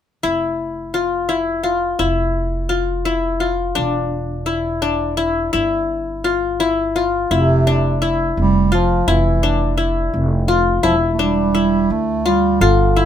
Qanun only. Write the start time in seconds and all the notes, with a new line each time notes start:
0.23 E4
0.94 F4
1.29 E4
1.63 F4
1.99 E4
2.69 F4
3.05 E4
3.40 F4
3.75 D4
4.46 E4
4.82 D4
5.17 E4
5.53 E4
6.24 F4
6.60 E4
6.96 F4
7.31 E4
7.67 D4
8.02 E4
8.72 F4
9.08 E4
9.43 D4
9.78 E4
10.48 F4
10.83 E4
11.19 D4
11.55 E4
12.26 F4
12.61 F4
12.96 E4